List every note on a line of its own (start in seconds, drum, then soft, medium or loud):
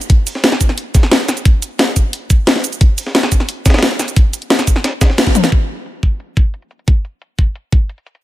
0.01 closed hi-hat soft
0.01 shaker soft
0.10 kick loud
0.10 closed hi-hat medium
0.27 closed hi-hat medium
0.27 open hi-hat medium
0.27 shaker medium
0.35 snare soft
0.44 snare loud
0.44 closed hi-hat medium
0.52 snare medium
0.61 kick medium
0.61 closed hi-hat medium
0.61 shaker medium
0.69 snare soft
0.69 closed hi-hat soft
0.78 closed hi-hat medium
0.95 kick loud
0.95 snare soft
0.95 closed hi-hat medium
0.95 shaker medium
1.03 snare soft
1.12 snare loud
1.12 closed hi-hat medium
1.20 snare soft
1.20 closed hi-hat soft
1.28 snare soft
1.28 closed hi-hat medium
1.28 shaker medium
1.37 closed hi-hat soft
1.37 shaker soft
1.45 kick loud
1.45 closed hi-hat loud
1.45 closed hi-hat medium
1.62 closed hi-hat medium
1.62 shaker medium
1.79 snare loud
1.79 closed hi-hat medium
1.96 kick medium
1.96 closed hi-hat medium
1.96 shaker medium
2.13 closed hi-hat loud
2.13 closed hi-hat medium
2.30 kick loud
2.30 closed hi-hat medium
2.30 shaker medium
2.47 snare loud
2.47 closed hi-hat medium
2.56 snare soft
2.56 closed hi-hat soft
2.64 closed hi-hat medium
2.64 shaker medium
2.72 closed hi-hat soft
2.72 shaker soft
2.81 kick loud
2.81 closed hi-hat loud
2.81 closed hi-hat medium
2.98 closed hi-hat medium
2.98 open hi-hat medium
2.98 shaker medium
3.06 snare soft
3.15 snare loud
3.15 closed hi-hat medium
3.23 snare medium
3.32 kick medium
3.32 closed hi-hat medium
3.32 shaker medium
3.40 snare soft
3.40 closed hi-hat soft
3.49 closed hi-hat medium
3.66 kick loud
3.66 snare medium
3.66 closed hi-hat medium
3.66 shaker medium
3.70 snare medium
3.70 closed hi-hat medium
3.74 snare medium
3.74 snare soft
3.74 closed hi-hat medium
3.78 snare medium
3.78 closed hi-hat medium
3.83 snare loud
3.83 closed hi-hat loud
3.83 closed hi-hat medium
3.91 snare soft
3.91 closed hi-hat soft
3.99 snare medium
3.99 snare soft
3.99 closed hi-hat medium
3.99 shaker medium
4.08 closed hi-hat soft
4.08 shaker soft
4.16 kick loud
4.16 closed hi-hat loud
4.16 closed hi-hat medium
4.33 closed hi-hat medium
4.33 shaker medium
4.42 closed hi-hat soft
4.50 snare loud
4.50 closed hi-hat loud
4.50 closed hi-hat medium
4.59 snare medium
4.59 shaker soft
4.67 kick medium
4.67 closed hi-hat medium
4.67 shaker medium
4.76 snare soft
4.84 snare loud
4.84 closed hi-hat loud
4.84 closed hi-hat medium
5.01 kick loud
5.01 snare loud
5.01 closed hi-hat medium
5.01 shaker medium
5.10 snare soft
5.18 snare loud
5.18 closed hi-hat loud
5.18 closed hi-hat medium
5.18 shaker soft
5.27 kick medium
5.27 snare soft
5.27 closed hi-hat soft
5.35 closed hi-hat medium
5.35 high tom medium
5.35 shaker medium
5.44 snare medium
5.44 closed hi-hat soft
5.44 shaker soft
5.52 kick loud
5.69 closed hi-hat medium
5.86 closed hi-hat medium
6.03 kick medium
6.03 closed hi-hat medium
6.20 closed hi-hat medium
6.37 kick loud
6.37 closed hi-hat medium
6.54 closed hi-hat medium
6.62 closed hi-hat soft
6.71 closed hi-hat medium
6.71 shaker medium
6.79 closed hi-hat soft
6.88 kick loud
6.88 closed hi-hat medium
7.05 closed hi-hat medium
7.05 shaker medium
7.22 closed hi-hat medium
7.39 kick medium
7.39 closed hi-hat medium
7.55 closed hi-hat medium
7.72 kick loud
7.72 closed hi-hat medium
7.89 closed hi-hat medium
7.89 shaker soft
7.98 closed hi-hat soft
8.06 closed hi-hat medium
8.06 shaker soft
8.15 closed hi-hat soft